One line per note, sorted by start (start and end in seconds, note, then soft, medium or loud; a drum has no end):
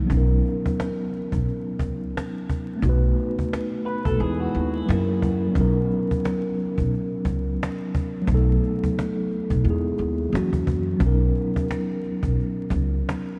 0.00 0.12 E3 medium
0.00 0.12 G#3 soft
0.00 0.12 A#3 soft
0.00 0.11 D#4 medium
0.04 2.76 F#3 medium
0.04 2.77 B3 medium
0.10 0.39 B1 medium
0.10 2.79 C#4 medium
0.10 cajon bass loud
0.14 2.81 D#4 medium
0.14 2.82 A#4 medium
0.46 cajon slap soft
0.66 cajon bass medium
0.80 cajon slap loud
1.13 cajon slap soft
1.32 1.45 B1 medium
1.32 cajon bass medium
1.49 cajon slap soft
1.79 2.09 C#2 medium
1.79 cajon bass medium
2.17 cajon slap loud
2.49 cajon bass medium
2.76 4.13 A3 medium
2.76 4.15 B3 medium
2.82 3.12 B1 loud
2.82 4.16 D#4 medium
2.82 4.18 F#4 medium
2.82 cajon bass loud
2.89 4.20 B4 medium
3.18 cajon slap soft
3.39 cajon bass medium
3.53 cajon slap loud
3.86 4.04 B4 medium
3.86 cajon slap soft
4.05 4.17 B1 medium
4.05 4.20 A4 medium
4.05 cajon bass medium
4.17 4.49 E2 medium
4.17 4.86 G#3 medium
4.17 4.87 B3 medium
4.17 4.88 D#4 medium
4.17 4.40 G#4 medium
4.22 4.89 E4 medium
4.22 4.89 B4 medium
4.22 cajon slap soft
4.40 4.74 F#4 medium
4.55 4.83 D#2 medium
4.55 cajon slap soft
4.74 5.06 E4 medium
4.86 5.46 F#2 loud
4.86 5.46 F#3 medium
4.86 5.56 A#3 medium
4.86 5.53 C#4 medium
4.90 5.57 E4 medium
4.90 5.58 A#4 medium
4.90 cajon slap loud
5.22 cajon bass medium
5.48 8.20 F#3 medium
5.48 8.22 B3 medium
5.54 5.84 B1 medium
5.54 8.23 C#4 medium
5.54 8.25 D#4 medium
5.54 cajon bass loud
5.60 8.27 A#4 medium
5.91 cajon slap soft
6.11 cajon bass medium
6.25 cajon slap loud
6.58 cajon slap soft
6.78 6.90 B1 medium
6.78 cajon bass medium
6.94 cajon slap soft
7.25 7.54 C#2 medium
7.25 cajon bass medium
7.63 cajon slap loud
7.95 cajon bass loud
8.22 9.59 F#3 medium
8.22 9.60 A3 medium
8.27 8.57 B1 medium
8.27 9.62 B3 medium
8.27 9.63 D#4 medium
8.27 cajon bass loud
8.34 9.65 A4 medium
8.64 cajon slap soft
8.84 cajon bass medium
8.99 cajon slap loud
9.31 cajon slap soft
9.50 9.62 B1 medium
9.50 cajon bass medium
9.64 9.93 E2 medium
9.64 10.33 G#3 medium
9.64 10.34 B3 medium
9.64 10.32 E4 medium
9.64 cajon slap soft
9.69 10.35 D#4 medium
9.69 10.36 G#4 medium
9.99 10.28 D#2 medium
9.99 cajon slap soft
10.29 10.90 F#2 medium
10.29 10.99 E3 medium
10.29 10.92 F#3 medium
10.29 11.01 A#3 medium
10.35 10.99 C#4 medium
10.35 11.03 F#4 medium
10.35 cajon slap medium
10.53 cajon bass medium
10.67 cajon bass medium
10.94 13.39 F#3 medium
10.94 13.39 B3 medium
11.00 11.29 B1 loud
11.00 13.39 C#4 medium
11.00 13.39 D#4 medium
11.00 cajon bass loud
11.06 13.39 A#4 medium
11.36 cajon slap soft
11.56 cajon bass medium
11.71 cajon slap loud
12.04 cajon slap soft
12.23 12.35 B1 medium
12.23 cajon bass medium
12.40 cajon slap soft
12.70 13.00 C#2 medium
12.70 cajon bass medium
13.09 cajon slap loud